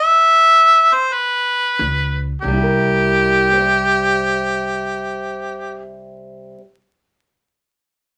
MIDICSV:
0, 0, Header, 1, 4, 480
1, 0, Start_track
1, 0, Tempo, 607903
1, 1400, Tempo, 658617
1, 1872, Time_signature, 4, 2, 24, 8
1, 6063, End_track
2, 0, Start_track
2, 0, Title_t, "Harmonica"
2, 0, Program_c, 0, 22
2, 0, Note_on_c, 0, 76, 105
2, 738, Note_on_c, 0, 72, 84
2, 750, Note_off_c, 0, 76, 0
2, 893, Note_on_c, 0, 71, 78
2, 905, Note_off_c, 0, 72, 0
2, 1699, Note_off_c, 0, 71, 0
2, 1871, Note_on_c, 0, 67, 94
2, 4349, Note_off_c, 0, 67, 0
2, 6063, End_track
3, 0, Start_track
3, 0, Title_t, "Steel-string acoustic guitar"
3, 0, Program_c, 1, 25
3, 1415, Note_on_c, 1, 49, 67
3, 1846, Note_off_c, 1, 49, 0
3, 1874, Note_on_c, 1, 48, 66
3, 1914, Note_on_c, 1, 55, 63
3, 1950, Note_on_c, 1, 64, 62
3, 1986, Note_on_c, 1, 67, 61
3, 2025, Note_on_c, 1, 70, 55
3, 2668, Note_off_c, 1, 64, 0
3, 2671, Note_on_c, 1, 72, 65
3, 2693, Note_off_c, 1, 70, 0
3, 2716, Note_off_c, 1, 67, 0
3, 2719, Note_on_c, 1, 76, 63
3, 2762, Note_on_c, 1, 79, 66
3, 4891, Note_off_c, 1, 48, 0
3, 4892, Note_off_c, 1, 72, 0
3, 4910, Note_off_c, 1, 55, 0
3, 4916, Note_off_c, 1, 76, 0
3, 4937, Note_off_c, 1, 79, 0
3, 6063, End_track
4, 0, Start_track
4, 0, Title_t, "Upright bass"
4, 0, Program_c, 2, 32
4, 1414, Note_on_c, 2, 37, 97
4, 1791, Note_off_c, 2, 37, 0
4, 1883, Note_on_c, 2, 36, 85
4, 4866, Note_off_c, 2, 36, 0
4, 6063, End_track
0, 0, End_of_file